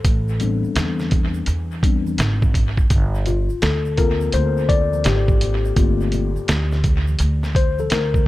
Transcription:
Already playing: A4
0.04 A1, kick, closed hi-hat, shaker
0.28 shaker
0.40 G3 B3 C4 D4, closed hi-hat, low conga, shaker
0.63 muted upright bass stroke, shaker
0.76 E2, snare, closed hi-hat, shaker
0.99 snare, shaker
1.11 kick, closed hi-hat, low conga, shaker
1.34 high conga, shaker
1.46 E2, closed hi-hat, shaker
1.71 shaker
1.83 G3 B3 C4 D4, kick, closed hi-hat, shaker
2.07 high conga, shaker
2.18 G#1, snare, closed hi-hat, shaker
2.42 kick, high conga, shaker
2.54 kick, closed hi-hat, low conga, shaker
2.77 kick, shaker
2.90 G1, kick, closed hi-hat, shaker
3.15 shaker
3.26 F4, closed hi-hat, low conga, shaker
3.50 muted upright bass stroke, shaker
3.62 D2 A4, snare, closed hi-hat, shaker
3.85 shaker
3.97 A#3 C4 F4 A4 A#4, kick, closed hi-hat, low conga, shaker
4.21 high conga, shaker
4.32 D2 C5, closed hi-hat, shaker
4.57 shaker
4.69 D5, kick, closed hi-hat, shaker
4.93 high conga, shaker
5.04 G#1 G4, snare, closed hi-hat, shaker
5.28 kick, high conga, shaker
5.41 closed hi-hat, low conga, shaker
5.65 shaker
5.76 G1 A3 A#3 C4 F4, kick, closed hi-hat, shaker
6.01 shaker
6.12 closed hi-hat, low conga, shaker
6.36 muted upright bass stroke, shaker
6.48 D2, snare, closed hi-hat, shaker
6.72 snare, shaker
6.84 kick, closed hi-hat, low conga, shaker
7.07 high conga, shaker
7.19 D2, closed hi-hat, shaker
7.43 snare, shaker
7.55 C5, kick, closed hi-hat, shaker
7.79 A4, high conga, shaker
7.90 D2 A#4, snare, closed hi-hat, shaker
8.14 kick, high conga, shaker

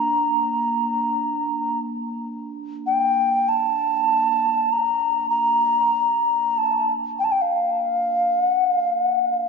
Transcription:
Already playing: A#3 D4 A#5
2.86 G5
3.48 A5
4.72 A#5
5.30 A#5
6.51 A#5
6.58 A5
7.19 G5
7.24 A5
7.31 G5
7.41 F5
8.45 F#5
8.73 F5
9.04 F#5
9.32 F5

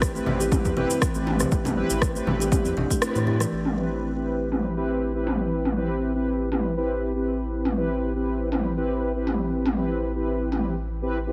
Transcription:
Already playing: A1 C4 E4 G4 B4
0.02 E4, kick, cross-stick, cabasa
0.15 A3 C4 E4 G4 B4, cabasa
0.26 A1, high conga, low conga
0.40 G4, muted conga, cabasa
0.52 C4 E4 G4 B4, kick, mid tom, cabasa
0.65 E2, kick, cabasa
0.77 A1 C4 E4 G4 B4, muted conga, low conga
0.90 high conga, cabasa
1.02 E3, kick, cross-stick, cabasa
1.14 A1 A3 C4 E4 G4 B4, cabasa
1.27 mid tom, muted conga
1.40 C4, cross-stick, low conga, cabasa
1.52 A1 A3, kick, cabasa
1.65 C4, mid tom, muted conga, low conga, cabasa
1.77 C4 E4 G4 B4
1.90 A1, high conga, cabasa
2.02 E4, kick, cross-stick, cabasa
2.15 A3 C4 E4 G4 B4, cabasa
2.27 A1, high conga, low conga
2.40 G4, muted conga, cabasa
2.52 C4 E4 G4 B4, kick, mid tom, cabasa
2.65 E2, cabasa
2.77 A1 D4, muted conga, low conga
2.90 A3, kick, cabasa
3.02 A3 C4 E4 G4 B4, cross-stick, cabasa
3.15 A2 A3, high conga, cabasa
3.27 C4 E4 G4 B4, muted conga, high conga
3.40 E3, cross-stick, cabasa
3.52 A1
3.65 mid tom
3.77 C4 E4 G4 B4
4.16 C4 E4 G4 B4
4.52 C4 E4 G4 B4, mid tom
4.77 C4 E4 G4 B4
5.15 C4 E4 G4 B4
5.27 mid tom
5.65 mid tom
5.77 C4 E4 G4 B4
6.15 C4 E4 G4 B4
6.52 C4 E4 G4 B4, mid tom
6.77 C4 E4 G4 B4
7.16 C4 E4 G4 B4
7.65 mid tom
7.77 C4 E4 G4 B4
8.16 C4 E4 G4 B4
8.52 C4 E4 G4 B4, mid tom
8.77 C4 E4 G4 B4
9.15 C4 E4 G4 B4
9.27 mid tom
9.66 mid tom
9.77 C4 E4 G4 B4
10.15 C4 E4 G4 B4
10.52 C4 E4 G4 B4, mid tom
11.02 C4 E4 G4 B4
11.27 C4 E4 G4 B4

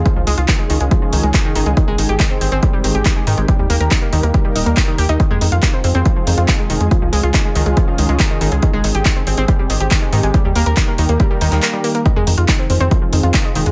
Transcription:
Already playing: G#3 F4
0.06 D#3 F3 C#4 G#4, kick, closed hi-hat
0.16 C#2 F3
0.27 C#2 G#3, open hi-hat
0.38 C#2 F4, closed hi-hat
0.48 D#3, kick, clap, closed hi-hat
0.59 G#3
0.70 C#2 D#3, open hi-hat
0.81 C#2 G#3, closed hi-hat
0.91 F3, kick, closed hi-hat
1.02 F3
1.13 C#2 D#3, open hi-hat
1.23 C#2 G#3, closed hi-hat
1.34 D#3, kick, clap, closed hi-hat
1.45 D#3
1.56 G#1 D#3, open hi-hat
1.66 C#2 G#3, closed hi-hat
1.77 D#3 G#3 C4 G4, kick, closed hi-hat
1.88 G#1 G#3
1.98 G#1 D#3, open hi-hat
2.09 G#1 G4, closed hi-hat
2.20 D#3, kick, clap, closed hi-hat
2.31 C4
2.41 G#1 C4, open hi-hat
2.52 G#1 C4, closed hi-hat
2.63 G3, kick, closed hi-hat
2.73 G3
2.84 G#1 D#3, open hi-hat
2.95 G#1 G4, closed hi-hat
3.05 D#3, kick, clap, closed hi-hat
3.16 G#3
3.27 G#2 D#3, open hi-hat
3.38 G#1 G#3, closed hi-hat
3.48 G3 A#3 A#4, kick, closed hi-hat
3.59 D#2 G3
3.70 D#2 A#3, open hi-hat
3.81 D#2 A#4, closed hi-hat
3.91 D#3, kick, clap, closed hi-hat
4.02 A#3
4.13 D#2 D#3, open hi-hat
4.23 D#2 A#3, closed hi-hat
4.34 G3, kick, closed hi-hat
4.45 G3
4.56 D#1 D#4, open hi-hat
4.66 D#2 A#3, closed hi-hat
4.77 D#3, kick, clap, closed hi-hat
4.88 D#3
4.98 D#2 G4, open hi-hat
5.09 D#2 D#4, closed hi-hat
5.20 D#3 G#3 C4 F4 G#4, kick, closed hi-hat
5.31 F2 G#3
5.41 F2 D#3, open hi-hat
5.52 F2 F4, closed hi-hat
5.63 D#3, kick, clap, closed hi-hat
5.74 C4
5.84 F2 C4, open hi-hat
5.95 F2 C4, closed hi-hat
6.05 F3, kick, closed hi-hat
6.16 F3
6.27 F2 D#3, open hi-hat
6.38 F2 F4, closed hi-hat
6.48 D#3, kick, clap, closed hi-hat
6.59 G#3
6.70 F1 D#3, open hi-hat
6.81 F2 G#3, closed hi-hat
6.91 F3 C#4 F4, kick, closed hi-hat
7.02 C#2 F3
7.13 C#2 G#3, open hi-hat
7.23 C#2 F4, closed hi-hat
7.34 D#3, kick, clap, closed hi-hat
7.45 G#3
7.55 C#2 D#3, open hi-hat
7.66 C#2 G#3, closed hi-hat
7.77 F3, kick, closed hi-hat
7.88 F3
7.98 C#2 D#3, open hi-hat
8.09 C#2 G#3, closed hi-hat
8.20 D#3, kick, clap, closed hi-hat
8.31 D#3
8.41 G#1 D#3, open hi-hat
8.52 C#2 G#3, closed hi-hat
8.62 D#3 C4 G4, kick, closed hi-hat
8.73 G#1 G#3
8.84 G#1 D#3, open hi-hat
8.95 G#1 G4, closed hi-hat
9.05 D#3, kick, clap, closed hi-hat
9.16 C4
9.27 G#1 C4, open hi-hat
9.38 G#1 C4, closed hi-hat
9.48 G3, kick, closed hi-hat
9.59 G3
9.70 G#1 D#3, open hi-hat
9.80 G#1 G4, closed hi-hat
9.91 D#3, kick, clap, closed hi-hat
10.02 G#3
10.13 G#2 D#3, open hi-hat
10.23 G#1 G#3, closed hi-hat
10.34 D#3 G3 A#3 A#4, kick, closed hi-hat
10.45 D#2 G3
10.55 D#2 A#3, open hi-hat
10.66 D#2 A#4, closed hi-hat
10.77 D#3, kick, clap, closed hi-hat
10.88 A#3
10.98 D#2 D#3, open hi-hat
11.09 D#2 A#3, closed hi-hat
11.20 G3, kick, closed hi-hat
11.31 G3
11.41 D#2 D#3, open hi-hat
11.52 D#2 D#3, clap, closed hi-hat
11.63 A#4, clap, closed hi-hat
11.73 G3
11.84 A#3, open hi-hat
11.95 A#3, closed hi-hat
12.06 D#3 G#3 C4 F4 G#4, kick, closed hi-hat
12.16 F2 G#3
12.27 F2 D#3, open hi-hat
12.38 F2 F4, closed hi-hat
12.48 D#3, kick, clap, closed hi-hat
12.59 C4
12.70 F2 C4, open hi-hat
12.81 F2 C4, closed hi-hat
12.91 F3, kick, closed hi-hat
13.02 F3
13.13 F2 D#3, open hi-hat
13.23 F2 F4, closed hi-hat
13.34 D#3, kick, clap, closed hi-hat
13.45 G#3
13.55 F1 D#3, open hi-hat
13.66 F2 G#3, closed hi-hat

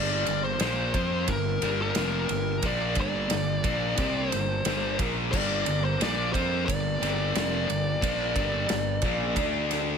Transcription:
Already playing: G1 G2 D3 G3 A#3 D4 A#4 D5
0.26 G1 G2 D3, ride
0.44 C5
0.60 A#1 A#2 F3 A#3, snare, ride
0.94 F2 F3 C4 F4, kick, ride
1.28 G1 G2 D3 A#4, kick, ride
1.62 G1 G2 D3 G3, ride
1.82 A#4
1.95 F1 F2 C3 F3, snare, ride
2.29 G1 G2 D3, ride
2.62 A#1 A#2 F3 A#3 D5, kick, ride
2.95 G1 G2 D3 G3, kick, ride
3.01 D5
3.30 G1 G2 D3, snare, ride
3.64 A#1 A#2 F3 A#3, kick, ride
3.97 C2 C3 G3 C4, kick, ride
4.29 G1 G2 C5, ride
4.33 D3, snare
4.65 G1 G2 D3 G3, snare, ride
4.99 A#1 A#2 F3 A#3, kick, ride
5.32 G1 G2 D3 D5, kick, crash
5.36 G3
5.66 G1 G2 D3, ride
5.85 C5
6.00 A#1 A#2 F3 A#3 D5, snare, ride
6.33 F2 F3 C4 F4 C5, kick, ride
6.66 G1 G2 D3 D5, kick, ride
7.01 G1 G2 D3 G3, snare, ride
7.35 F1 F2 C3 F3, snare, ride
7.68 G1 G2 D3, ride
8.01 A#1 A#2 F3 A#3, kick, ride
8.36 G1 G2 D3 G3, kick, ride
8.68 G1 G2 D3, snare, ride
8.72 D3
9.02 A#1 A#2 F3 A#3, kick, ride
9.36 D2 D3 A3 D4 A4, kick, ride
9.71 snare, ride

